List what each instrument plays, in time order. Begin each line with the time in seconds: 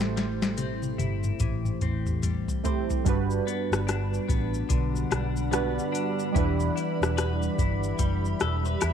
Already playing: fingered electric bass A1, clean electric guitar A2 G3, synth keys A3 E4 G4 C5
0.01 snare
0.16 clean electric guitar G3, snare, closed hi-hat, shaker
0.42 snare, shaker
0.57 clean electric guitar C4, closed hi-hat, high tom, shaker
0.83 high tom, shaker
0.98 fingered electric bass G1, clean electric guitar E4, closed hi-hat, high tom, shaker
1.24 mid tom, shaker
1.40 fingered electric bass A1, clean electric guitar E3, kick, closed hi-hat, mid tom, shaker
1.65 mid tom, shaker
1.81 fingered electric bass A1, clean electric guitar C4, closed hi-hat, mid tom, shaker
2.06 mid tom, shaker
2.23 clean electric guitar G3, closed hi-hat, mid tom, shaker
2.48 floor tom, shaker
2.64 synth keys A3 E4 G4 C5, clean electric guitar C4, closed hi-hat, floor tom, shaker
2.90 floor tom, shaker
3.04 fingered electric bass G1, clean electric guitar G2, synth keys G3 D4 F#4, ambient pad G3 D5 F#5 B5, kick, closed hi-hat, shaker
3.09 synth keys B4
3.30 shaker
3.47 clean electric guitar B3, closed hi-hat, shaker
3.71 fingered electric bass G1, cross-stick, shaker
3.87 clean electric guitar D4, cross-stick, closed hi-hat, shaker
4.14 shaker
4.28 fingered electric bass A1, clean electric guitar B3, kick, closed hi-hat, shaker
4.54 shaker
4.69 fingered electric bass B1, clean electric guitar D3, kick, closed hi-hat, shaker
4.96 shaker
5.11 fingered electric bass B1, clean electric guitar D4, cross-stick, closed hi-hat, shaker
5.37 shaker
5.51 synth keys G3 D4 F#4 B4, clean electric guitar B3, cross-stick, closed hi-hat, shaker
5.79 shaker
5.92 clean electric guitar D4, closed hi-hat, shaker
6.19 shaker
6.32 fingered electric bass E1, clean electric guitar E3, synth keys G3 D4 E4, ambient pad G4 E5, kick, closed hi-hat, shaker
6.38 synth keys B4
6.60 shaker
6.76 clean electric guitar E4, closed hi-hat, shaker
7.01 fingered electric bass E1, cross-stick, shaker
7.17 clean electric guitar B4, cross-stick, closed hi-hat, shaker
7.43 shaker
7.59 fingered electric bass G1, clean electric guitar E4, kick, closed hi-hat, shaker
7.84 shaker
7.99 fingered electric bass F#1, clean electric guitar G3, kick, closed hi-hat, shaker
8.25 shaker
8.40 fingered electric bass E1, clean electric guitar A4, cross-stick, closed hi-hat, shaker
8.65 clean electric guitar B4, shaker
8.81 fingered electric bass E2, clean electric guitar E4, cross-stick, closed hi-hat, shaker